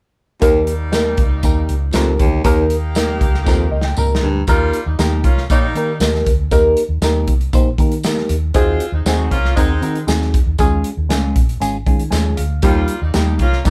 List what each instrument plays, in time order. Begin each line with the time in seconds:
0.41 baritone saxophone D#2, fingered electric bass D#2, saxophone section G3 A#3 D#4, reed electric piano A#3 D#4 G4 A#4, kick, closed hi-hat, tambourine
0.67 closed hi-hat
0.92 reed electric piano A#3 D#4 G4 A#4, snare, closed hi-hat, tambourine
1.17 fingered electric bass C#2, kick, closed hi-hat
1.43 fingered electric bass D#2, reed electric piano A#3 D#4 G4 A#4, kick, closed hi-hat, tambourine
1.69 fingered electric bass C#2, closed hi-hat
1.93 fingered electric bass C#2, baritone saxophone F2, reed electric piano A#3 D#4 G4 A#4, snare, closed hi-hat, tambourine
2.19 fingered electric bass D2, baritone saxophone D#2, kick, closed hi-hat
2.44 baritone saxophone D#2, fingered electric bass D#2, saxophone section A#3 D#4 G4, reed electric piano A#3 D#4 G4 A#4, kick, closed hi-hat, tambourine
2.70 closed hi-hat
2.95 reed electric piano A#3 D#4 G4 A#4, snare, closed hi-hat, tambourine
3.21 fingered electric bass C#2, kick, closed hi-hat
3.34 snare
3.45 fingered electric bass D#2, baritone saxophone F2, reed electric piano A#3 D#4 G4 A#4, kick, snare, tambourine
3.72 fingered electric bass C#2, reed electric piano D#5
3.81 reed electric piano G5, snare
3.97 fingered electric bass C#2, reed electric piano A#3 D#4 G4 A#4 A#5, mid tom, tambourine
4.15 snare
4.22 fingered electric bass D2, baritone saxophone G2
4.47 fingered electric bass D#2, saxophone section G3 A#3 F4, reed electric piano A#3 D#4 G4 A#4, kick, closed hi-hat, tambourine
4.73 closed hi-hat
4.86 fingered electric bass D#2, saxophone section G3 A#3 D#4
4.98 fingered electric bass D#2, saxophone section A#3 D#4 G4, reed electric piano A#3 D#4 G4 A#4, snare, closed hi-hat, tambourine
5.24 fingered electric bass C2, saxophone section A#3 C#4 F4, kick, closed hi-hat
5.37 snare
5.49 fingered electric bass A#1, saxophone section G3 A#3 D#4, reed electric piano A#3 D#4 G4 C#5, kick, closed hi-hat, tambourine
5.75 fingered electric bass D#3, reed electric piano A#3 D#4 G4 A#4, closed hi-hat
6.00 fingered electric bass D#2, reed electric piano A#3 D#4 G4 A#4, snare, closed hi-hat, tambourine
6.15 snare
6.26 fingered electric bass D2, kick, closed hi-hat
6.51 fingered electric bass D#2, reed electric piano A#3 D#4 G4 A#4, kick, closed hi-hat, tambourine
6.77 closed hi-hat
6.89 fingered electric bass D#2
7.01 fingered electric bass D#2, reed electric piano A#3 D#4 G4 A#4, snare, closed hi-hat, tambourine
7.28 fingered electric bass C2, kick, closed hi-hat
7.41 closed hi-hat
7.53 fingered electric bass A#1, reed electric piano A#3 D#4 G4 C5, kick, closed hi-hat, tambourine
7.78 fingered electric bass D#3, reed electric piano A#3 D#4 G4 A#4, kick, closed hi-hat
7.92 closed hi-hat
8.03 reed electric piano A#3 D#4 G4 A#4, snare, closed hi-hat, tambourine
8.18 snare
8.29 fingered electric bass D#2, closed hi-hat
8.54 fingered electric bass D#2, saxophone section G#3 C4 F4, reed electric piano C4 D#4 F#4 G#4, kick, closed hi-hat, tambourine
8.80 closed hi-hat
8.92 fingered electric bass D#2, saxophone section G#3 C4 D#4
9.05 fingered electric bass D#2, saxophone section C4 D#4 F#4, reed electric piano C4 D#4 F#4 G#4, snare, closed hi-hat, tambourine
9.31 fingered electric bass C2, saxophone section A#3 C#4 F4, kick, closed hi-hat
9.45 snare
9.55 fingered electric bass D#2, saxophone section G#3 C4 D#4, reed electric piano C4 D#4 F#4 A#4, kick, closed hi-hat, tambourine
9.81 fingered electric bass D#3, reed electric piano C4 D#4 F#4 A#4, closed hi-hat
9.95 closed hi-hat
10.07 fingered electric bass D#2, reed electric piano C4 D#4 F#4 G#4, snare, closed hi-hat, tambourine
10.22 snare
10.34 kick, closed hi-hat
10.46 fingered electric bass D#2
10.58 fingered electric bass D#2, reed electric piano G#3 C#4 F4 G#4, kick, closed hi-hat, tambourine
10.84 closed hi-hat
10.97 fingered electric bass D#2
11.09 fingered electric bass C#2, reed electric piano G#3 C#4 F4 G#4, snare, closed hi-hat, tambourine
11.36 fingered electric bass A#1, kick, closed hi-hat
11.49 closed hi-hat
11.60 fingered electric bass G#1, reed electric piano G#3 C#4 F4 G#4, closed hi-hat, tambourine
11.86 fingered electric bass D#3, reed electric piano G#3 C#4 F4 G#4, kick, closed hi-hat
11.99 closed hi-hat
12.10 fingered electric bass D#2, reed electric piano G#3 C#4 F4 G#4 G#5, snare, closed hi-hat, tambourine
12.37 fingered electric bass D2, reed electric piano F5, closed hi-hat
12.62 baritone saxophone D#2, reed electric piano G3 A#3 D#4 G4, saxophone section G3 A#3 F4, kick, closed hi-hat, tambourine
12.88 closed hi-hat
13.02 fingered electric bass D#2, saxophone section G3 A#3 D#4
13.14 fingered electric bass D#2, reed electric piano G3 A#3 D#4 G4, saxophone section A#3 D#4 G4, snare, closed hi-hat, tambourine
13.39 fingered electric bass C2, saxophone section A#3 C#4 F4, kick, closed hi-hat
13.53 snare
13.65 fingered electric bass A#1, reed electric piano G3 A#3 D#4 A#4, saxophone section G3 A#3 D#4, kick, closed hi-hat, tambourine